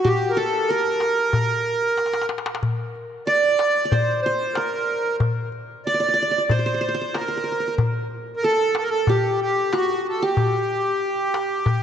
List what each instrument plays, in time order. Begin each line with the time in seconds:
Already playing: qanun F#4
0.04 qanun G4, accordion G4, darbuka dum
0.21 darbuka ka
0.30 accordion A#4
0.36 accordion A4, qanun A4
0.68 accordion A#4, qanun A#4, darbuka ka
0.85 darbuka ka
1.00 darbuka tek
1.33 darbuka dum
1.50 darbuka ka
1.66 darbuka ka
1.82 darbuka ka
1.98 darbuka tek
2.06 darbuka ka
2.14 darbuka tek
2.22 darbuka ka
2.29 darbuka tek
2.38 darbuka ka
2.46 darbuka tek
2.55 darbuka ka
2.63 darbuka dum
2.95 darbuka ka
3.27 qanun D5, accordion D5
3.44 darbuka ka
3.59 darbuka tek
3.85 qanun D5
3.91 accordion C5, qanun C5, darbuka dum
4.22 accordion C5, qanun C5, darbuka ka
4.55 accordion A#4, qanun A#4, darbuka tek
5.20 darbuka dum
5.52 darbuka ka
5.86 accordion D5, qanun D5
5.94 qanun D5
6.00 qanun D5, darbuka ka
6.08 qanun D5
6.14 qanun D5
6.22 qanun D5
6.31 qanun D5
6.38 qanun D5
6.50 accordion C5, qanun C5, darbuka dum
6.59 qanun C5
6.66 qanun C5
6.74 qanun C5
6.81 qanun C5
6.88 qanun C5
6.94 qanun C5
7.01 qanun C5
7.14 accordion A#4, qanun A#4, darbuka tek
7.21 qanun A#4
7.28 qanun A#4, darbuka ka
7.37 qanun A#4
7.44 qanun A#4
7.52 qanun A#4
7.60 qanun A#4
7.68 qanun A#4
7.78 darbuka dum
8.11 darbuka ka
8.37 accordion A#4
8.43 accordion A4, qanun A4
8.75 accordion A4, darbuka tek
8.82 accordion A#4
8.90 accordion A4
9.07 accordion G4, qanun G4, darbuka dum
9.40 accordion G4, darbuka ka
9.73 qanun F#4, accordion F#4, darbuka tek
9.89 darbuka ka
10.08 accordion A4
10.22 qanun G4, accordion G4
10.37 darbuka dum
10.53 darbuka ka
10.69 darbuka ka
11.34 darbuka tek
11.66 darbuka dum